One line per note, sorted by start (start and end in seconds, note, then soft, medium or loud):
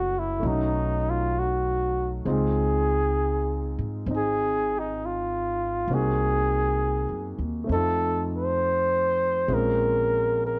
0.00 0.38 F#1 medium
0.00 0.38 A3 soft
0.00 0.40 C#4 soft
0.00 0.44 E4 soft
0.00 0.20 F#4 medium
0.00 0.45 F#4 soft
0.19 0.49 E4 medium
0.40 2.21 B1 medium
0.40 2.23 A3 soft
0.40 2.24 C#4 soft
0.40 2.25 D#4 soft
0.45 2.26 F#3 soft
0.45 1.11 D#4 medium
1.10 1.41 F4 medium
1.39 2.10 F#4 medium
2.25 3.74 C#2 medium
2.25 5.88 G#3 soft
2.25 4.06 C4 soft
2.25 4.09 D#4 soft
2.25 5.89 F4 soft
2.32 3.78 G#4 medium
3.79 4.05 G#2 medium
4.06 5.84 G#1 medium
4.06 5.88 C4 soft
4.11 5.90 D#4 soft
4.16 4.80 G#4 medium
4.79 5.07 D#4 medium
5.06 5.96 F4 medium
5.88 7.04 C2 medium
5.88 7.69 A#3 soft
5.88 7.66 C4 soft
5.92 7.70 D#4 soft
5.92 7.70 F#4 soft
5.92 7.43 G#4 medium
7.09 7.36 F#2 soft
7.38 7.66 D#2 medium
7.64 9.46 A3 soft
7.64 9.47 C4 soft
7.69 9.45 F2 medium
7.69 9.50 D#4 soft
7.69 8.28 A4 medium
7.76 9.48 F4 soft
8.37 9.55 C5 medium
9.48 10.59 A#1 medium
9.48 10.59 G#3 soft
9.48 10.59 C4 soft
9.48 10.59 C#4 soft
9.48 10.59 F4 soft
9.54 10.41 A#4 medium
10.46 10.59 A#4 medium